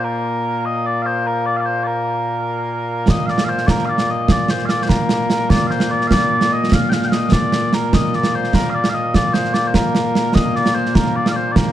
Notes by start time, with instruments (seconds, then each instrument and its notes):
Already playing: bagpipes A#2 A#3
0.04 bagpipes A#4
0.65 bagpipes D#5
0.86 bagpipes D5
1.02 bagpipes C5 F5
1.27 bagpipes A#4
1.46 bagpipes D5
1.57 bagpipes D5 F5
1.66 bagpipes C5
1.84 bagpipes A#4 D5
3.08 bagpipes D#5, concert bass drum, snare
3.26 bagpipes D5 F5, snare
3.38 snare
3.44 bagpipes F5
3.49 bagpipes C5
3.58 snare
3.67 bagpipes A#4 D5, concert bass drum, snare
3.78 snare
3.86 bagpipes D5 F5
3.98 snare
4.10 bagpipes D#5
4.28 bagpipes D5, concert bass drum, snare
4.48 bagpipes C5, snare
4.58 snare
4.66 bagpipes F5, snare
4.70 bagpipes D5
4.83 bagpipes C5
4.89 bagpipes A#4, concert bass drum, snare
5.09 snare
5.30 snare
5.50 bagpipes D5, concert bass drum, snare
5.67 bagpipes C5 F5, snare
5.80 snare
5.91 bagpipes D5
6.01 snare
6.08 bagpipes F5, concert bass drum, snare
6.12 bagpipes D5
6.21 snare
6.41 snare
6.52 bagpipes D#5
6.72 bagpipes F5, concert bass drum, snare
6.89 bagpipes F5 G5, snare
7.02 bagpipes G5, snare
7.08 bagpipes F5
7.12 bagpipes D#5, snare
7.32 bagpipes D5, concert bass drum, snare
7.52 snare
7.73 bagpipes A#4, snare
7.93 bagpipes D#5, concert bass drum, snare
8.13 bagpipes D5, snare
8.23 snare
8.35 bagpipes C5
8.44 snare
8.53 bagpipes A#4, concert bass drum, snare
8.64 snare
8.70 bagpipes F5
8.74 bagpipes D5
8.84 snare
8.89 bagpipes F5
8.94 bagpipes D#5
9.14 bagpipes D5, concert bass drum, snare
9.33 bagpipes C5, snare
9.45 snare
9.54 bagpipes D5, snare
9.67 bagpipes C5
9.74 bagpipes A#4, concert bass drum, snare
9.95 snare
10.15 snare
10.34 bagpipes D#5, concert bass drum, snare
10.55 bagpipes D5, snare
10.66 snare
10.74 bagpipes C5
10.86 snare
10.95 bagpipes A#4, concert bass drum, snare
11.06 snare
11.16 bagpipes D5
11.26 bagpipes F5, snare
11.31 bagpipes D5
11.36 bagpipes C5
11.52 bagpipes D5
11.56 bagpipes A#4, concert bass drum, snare